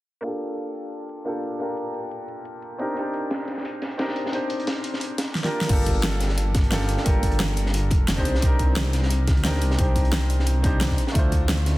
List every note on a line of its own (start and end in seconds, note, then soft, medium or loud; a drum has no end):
0.21 1.23 A#3 medium
0.21 1.24 D4 medium
0.21 1.24 F4 medium
0.21 closed hi-hat medium
0.26 1.25 G4 medium
0.26 1.26 A4 medium
0.41 closed hi-hat medium
0.58 closed hi-hat medium
0.75 closed hi-hat medium
0.92 closed hi-hat medium
1.09 closed hi-hat medium
1.25 1.57 A#3 medium
1.25 1.58 D4 medium
1.25 1.59 F4 medium
1.25 1.59 G4 medium
1.25 1.59 A4 medium
1.25 closed hi-hat medium
1.43 closed hi-hat medium
1.59 1.66 A#3 medium
1.59 1.66 D4 medium
1.59 1.67 F4 medium
1.59 1.67 G4 medium
1.59 1.67 A#4 medium
1.59 closed hi-hat medium
1.77 closed hi-hat medium
1.94 closed hi-hat medium
2.11 closed hi-hat medium
2.28 closed hi-hat medium
2.45 closed hi-hat medium
2.62 closed hi-hat medium
2.78 2.92 C4 medium
2.78 2.94 D4 medium
2.78 2.95 D#4 medium
2.78 2.96 G4 medium
2.78 2.96 A#4 medium
2.78 closed hi-hat medium
2.94 3.96 C4 medium
2.94 3.97 D4 medium
2.94 3.97 D#4 medium
2.94 closed hi-hat medium
2.99 3.98 G4 medium
2.99 3.99 A#4 medium
3.14 closed hi-hat medium
3.31 snare medium
3.31 closed hi-hat medium
3.48 snare soft
3.48 closed hi-hat medium
3.58 snare soft
3.65 closed hi-hat medium
3.82 snare soft
3.82 closed hi-hat medium
3.91 closed hi-hat soft
3.98 4.30 C4 medium
3.98 4.31 D4 medium
3.98 4.31 D#4 medium
3.98 4.32 G4 medium
3.98 4.32 A#4 medium
3.98 snare loud
3.98 closed hi-hat medium
4.08 snare medium
4.16 closed hi-hat medium
4.26 snare soft
4.31 4.38 C4 medium
4.31 4.39 D4 medium
4.31 4.39 D#4 medium
4.31 4.40 G4 medium
4.31 4.40 C5 medium
4.31 closed hi-hat medium
4.50 closed hi-hat medium
4.60 closed hi-hat soft
4.67 snare loud
4.67 closed hi-hat medium
4.84 closed hi-hat medium
4.94 snare soft
5.01 closed hi-hat medium
5.18 snare loud
5.18 closed hi-hat medium
5.35 snare medium
5.43 5.65 A#3 medium
5.43 5.66 D4 medium
5.43 5.68 F4 medium
5.43 5.68 G4 medium
5.43 5.68 A#4 medium
5.43 snare medium
5.61 snare medium
5.66 6.97 G1 loud
5.66 6.68 A#3 medium
5.66 6.69 D4 medium
5.66 6.70 F4 medium
5.66 kick loud
5.66 closed hi-hat loud
5.66 closed hi-hat medium
5.66 crash loud
5.71 6.71 G4 medium
5.71 6.72 A4 medium
5.86 kick medium
5.86 closed hi-hat medium
6.03 snare loud
6.03 closed hi-hat loud
6.03 closed hi-hat medium
6.20 snare soft
6.20 closed hi-hat medium
6.29 snare soft
6.38 closed hi-hat medium
6.55 kick loud
6.55 snare medium
6.55 closed hi-hat medium
6.64 closed hi-hat soft
6.70 7.03 A#3 medium
6.70 7.03 D4 medium
6.70 7.04 F4 medium
6.70 7.04 G4 medium
6.70 7.05 A4 loud
6.70 snare loud
6.70 closed hi-hat medium
6.81 snare medium
6.89 closed hi-hat medium
6.97 snare medium
7.04 7.93 G1 loud
7.04 7.11 A#3 medium
7.04 7.11 D4 medium
7.04 7.12 F4 medium
7.04 7.12 G4 medium
7.04 7.13 A#4 medium
7.04 kick loud
7.04 closed hi-hat medium
7.04 closed hi-hat loud
7.23 kick medium
7.23 closed hi-hat medium
7.31 closed hi-hat soft
7.39 snare loud
7.39 closed hi-hat medium
7.57 closed hi-hat medium
7.66 snare soft
7.74 closed hi-hat medium
7.74 closed hi-hat loud
7.91 8.24 F1 medium
7.91 kick loud
7.91 closed hi-hat medium
8.08 snare loud
8.08 closed hi-hat medium
8.16 8.38 C4 medium
8.16 8.39 D4 medium
8.16 8.41 D#4 medium
8.16 8.41 G4 medium
8.16 8.41 C5 medium
8.16 kick medium
8.16 snare medium
8.25 8.41 C2 medium
8.25 closed hi-hat medium
8.35 snare medium
8.39 9.35 C2 loud
8.39 9.41 C4 medium
8.39 9.42 D4 medium
8.39 9.43 D#4 medium
8.39 kick loud
8.39 closed hi-hat loud
8.39 closed hi-hat medium
8.44 9.44 G4 medium
8.44 9.45 A#4 medium
8.59 kick medium
8.59 closed hi-hat medium
8.76 snare loud
8.76 closed hi-hat medium
8.93 snare medium
8.93 closed hi-hat medium
9.03 snare soft
9.11 closed hi-hat medium
9.28 kick loud
9.28 snare medium
9.28 closed hi-hat medium
9.37 9.63 D2 medium
9.37 closed hi-hat soft
9.43 9.76 C4 medium
9.43 9.76 D4 medium
9.43 9.77 D#4 medium
9.43 9.77 G4 medium
9.43 9.78 A#4 medium
9.43 snare loud
9.43 closed hi-hat medium
9.54 snare medium
9.61 9.77 C2 medium
9.61 closed hi-hat medium
9.71 snare medium
9.77 10.97 C2 loud
9.77 9.84 C4 medium
9.77 9.84 D4 medium
9.77 9.85 D#4 medium
9.77 9.85 G4 medium
9.77 9.86 C5 medium
9.77 kick loud
9.77 closed hi-hat medium
9.96 kick medium
9.96 closed hi-hat medium
10.05 closed hi-hat soft
10.12 snare loud
10.12 closed hi-hat medium
10.30 closed hi-hat medium
10.39 snare soft
10.47 closed hi-hat medium
10.62 10.96 C4 medium
10.62 10.97 D4 medium
10.62 10.97 D#4 medium
10.62 10.98 G4 medium
10.62 10.98 C5 medium
10.62 kick loud
10.62 closed hi-hat medium
10.81 snare loud
10.81 closed hi-hat medium
10.90 kick medium
10.90 snare medium
10.98 closed hi-hat medium
11.07 snare medium
11.12 11.78 D2 loud
11.12 11.78 A3 medium
11.12 11.78 D4 medium
11.12 11.78 E4 medium
11.12 kick loud
11.12 closed hi-hat medium
11.17 11.78 F4 medium
11.17 11.78 C5 medium
11.32 kick medium
11.32 closed hi-hat medium
11.48 snare loud
11.48 closed hi-hat medium
11.66 snare soft
11.66 closed hi-hat medium